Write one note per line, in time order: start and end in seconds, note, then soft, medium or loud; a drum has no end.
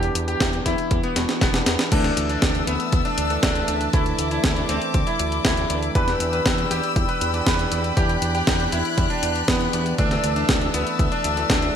0.00 0.11 E2 loud
0.00 1.14 E3 medium
0.00 1.14 B3 medium
0.00 1.14 D4 medium
0.00 0.23 G4 medium
0.00 1.14 G4 medium
0.00 closed hi-hat soft
0.15 0.36 E2 medium
0.15 closed hi-hat medium
0.28 0.60 G4 medium
0.28 closed hi-hat soft
0.40 0.61 E2 loud
0.40 kick loud
0.40 snare loud
0.40 closed hi-hat medium
0.53 closed hi-hat soft
0.66 0.76 E2 medium
0.66 0.98 E4 medium
0.66 kick medium
0.66 snare soft
0.66 closed hi-hat medium
0.78 closed hi-hat soft
0.91 1.01 E2 loud
0.91 kick loud
0.91 closed hi-hat medium
1.03 1.36 B3 medium
1.03 closed hi-hat soft
1.16 1.26 E1 medium
1.16 1.51 E3 medium
1.16 1.51 B3 medium
1.16 1.51 D4 medium
1.16 1.51 F#4 loud
1.16 snare medium
1.16 closed hi-hat loud
1.29 snare medium
1.29 closed hi-hat soft
1.41 1.62 E1 loud
1.41 1.85 B3 loud
1.41 kick loud
1.41 snare medium
1.41 closed hi-hat medium
1.54 1.89 E3 medium
1.54 1.89 B3 medium
1.54 1.89 D4 medium
1.54 1.89 G4 medium
1.54 snare medium
1.54 closed hi-hat soft
1.66 1.77 E2 medium
1.66 snare medium
1.66 closed hi-hat medium
1.79 snare medium
1.79 closed hi-hat soft
1.92 2.12 D2 loud
1.92 3.28 E3 medium
1.92 3.27 A3 medium
1.92 2.24 D4 medium
1.92 3.28 D4 medium
1.92 3.28 A4 loud
1.92 11.76 D5 medium
1.92 5.91 E5 medium
1.92 5.91 A5 medium
1.92 3.92 E6 medium
1.92 kick loud
1.92 closed hi-hat medium
1.92 crash medium
2.04 snare soft
2.04 closed hi-hat soft
2.17 2.37 D2 loud
2.17 closed hi-hat medium
2.29 2.62 D4 medium
2.29 closed hi-hat soft
2.42 2.63 D2 loud
2.42 kick loud
2.42 snare loud
2.42 closed hi-hat medium
2.55 closed hi-hat soft
2.67 2.78 D2 medium
2.67 3.00 B3 medium
2.67 closed hi-hat medium
2.80 closed hi-hat soft
2.92 3.03 D2 medium
2.92 kick loud
2.92 closed hi-hat medium
3.05 3.38 D4 medium
3.05 closed hi-hat soft
3.18 3.38 D2 loud
3.18 closed hi-hat loud
3.30 3.90 E3 medium
3.30 3.90 A3 medium
3.30 3.90 D4 medium
3.30 3.90 A4 loud
3.30 closed hi-hat soft
3.43 3.63 D2 medium
3.43 3.86 D4 loud
3.43 kick loud
3.43 snare loud
3.43 closed hi-hat medium
3.55 closed hi-hat soft
3.68 3.89 D2 medium
3.68 closed hi-hat medium
3.81 closed hi-hat soft
3.93 4.14 D2 loud
3.93 5.67 E3 medium
3.93 5.67 A3 medium
3.93 5.67 D4 medium
3.93 4.26 E4 medium
3.93 5.67 A4 loud
3.93 5.93 D6 medium
3.93 kick loud
3.93 closed hi-hat medium
4.06 closed hi-hat soft
4.19 4.39 D2 loud
4.19 closed hi-hat medium
4.31 4.64 E4 medium
4.31 closed hi-hat soft
4.44 4.64 D2 loud
4.44 kick loud
4.44 snare loud
4.44 closed hi-hat medium
4.56 closed hi-hat soft
4.69 4.79 D2 medium
4.69 5.02 C4 loud
4.69 closed hi-hat medium
4.82 closed hi-hat soft
4.94 5.05 D2 medium
4.94 kick loud
4.94 closed hi-hat medium
5.07 5.39 E4 medium
5.07 closed hi-hat soft
5.19 5.40 D2 loud
5.19 closed hi-hat medium
5.32 closed hi-hat soft
5.44 5.65 D2 loud
5.44 5.88 E4 medium
5.44 kick loud
5.44 snare loud
5.44 closed hi-hat medium
5.57 closed hi-hat soft
5.70 5.90 D2 medium
5.70 5.92 E3 medium
5.70 5.92 A3 medium
5.70 5.92 D4 medium
5.70 5.92 A4 medium
5.70 closed hi-hat medium
5.83 closed hi-hat soft
5.95 6.16 E2 loud
5.95 7.31 E3 medium
5.95 7.31 B3 medium
5.95 7.31 D4 medium
5.95 7.31 G4 loud
5.95 6.28 B4 loud
5.95 9.95 G5 medium
5.95 9.95 B5 medium
5.95 7.95 E6 medium
5.95 kick loud
5.95 closed hi-hat medium
6.08 snare soft
6.08 closed hi-hat soft
6.20 6.41 E2 loud
6.20 closed hi-hat medium
6.33 6.65 B4 medium
6.33 closed hi-hat soft
6.46 6.66 E2 loud
6.46 kick loud
6.46 snare loud
6.46 closed hi-hat medium
6.58 closed hi-hat soft
6.71 6.81 E2 medium
6.71 7.03 G4 loud
6.71 closed hi-hat medium
6.84 closed hi-hat soft
6.96 7.06 E2 medium
6.96 kick loud
6.96 closed hi-hat medium
7.09 7.41 B4 medium
7.09 closed hi-hat soft
7.21 7.42 E2 loud
7.21 closed hi-hat medium
7.34 7.94 E3 medium
7.34 7.94 B3 medium
7.34 7.94 D4 medium
7.34 7.94 G4 loud
7.34 closed hi-hat soft
7.47 7.67 E2 medium
7.47 7.90 B4 loud
7.47 kick loud
7.47 snare loud
7.47 closed hi-hat medium
7.59 closed hi-hat soft
7.72 7.92 E2 medium
7.72 closed hi-hat medium
7.84 closed hi-hat soft
7.97 8.17 E2 loud
7.97 9.70 E3 medium
7.97 9.70 B3 medium
7.97 9.70 D4 medium
7.97 8.29 G4 medium
7.97 9.70 G4 medium
7.97 9.97 F#6 medium
7.97 kick loud
7.97 closed hi-hat medium
8.09 closed hi-hat soft
8.22 8.42 E2 loud
8.22 closed hi-hat medium
8.35 8.67 G4 medium
8.35 closed hi-hat soft
8.47 8.68 E2 loud
8.47 kick loud
8.47 snare loud
8.47 closed hi-hat medium
8.60 closed hi-hat soft
8.72 8.83 E2 medium
8.72 9.05 E4 medium
8.72 closed hi-hat medium
8.85 closed hi-hat soft
8.98 9.08 E2 medium
8.98 kick loud
8.98 closed hi-hat medium
9.10 9.43 D4 medium
9.10 closed hi-hat soft
9.23 9.43 E2 loud
9.23 closed hi-hat medium
9.36 closed hi-hat soft
9.48 9.69 E2 medium
9.48 9.92 B3 medium
9.48 kick loud
9.48 snare loud
9.48 closed hi-hat medium
9.61 closed hi-hat soft
9.73 9.94 E2 medium
9.73 9.96 E3 medium
9.73 9.96 B3 medium
9.73 9.96 D4 medium
9.73 9.96 G4 medium
9.73 closed hi-hat medium
9.86 closed hi-hat soft
9.98 10.19 D2 loud
9.98 11.34 E3 medium
9.98 11.34 A3 medium
9.98 10.31 D4 loud
9.98 11.34 D4 medium
9.98 11.34 A4 loud
9.98 11.76 E5 medium
9.98 11.76 A5 medium
9.98 11.76 E6 medium
9.98 kick loud
9.98 closed hi-hat medium
10.11 snare soft
10.11 closed hi-hat soft
10.24 10.44 D2 medium
10.24 closed hi-hat medium
10.36 10.69 D4 medium
10.36 closed hi-hat soft
10.49 10.69 D2 loud
10.49 kick loud
10.49 snare loud
10.49 closed hi-hat medium
10.61 closed hi-hat soft
10.74 10.84 D2 medium
10.74 11.07 B3 loud
10.74 closed hi-hat medium
10.87 closed hi-hat soft
10.99 11.10 D2 medium
10.99 kick loud
10.99 closed hi-hat medium
11.12 11.45 D4 medium
11.12 closed hi-hat soft
11.24 11.45 D2 loud
11.24 closed hi-hat medium
11.37 11.76 E3 medium
11.37 11.76 A3 medium
11.37 11.76 D4 medium
11.37 11.76 A4 loud
11.37 closed hi-hat soft
11.50 11.70 D2 medium
11.50 11.76 D4 medium
11.50 kick loud
11.50 snare loud
11.50 closed hi-hat medium
11.62 closed hi-hat soft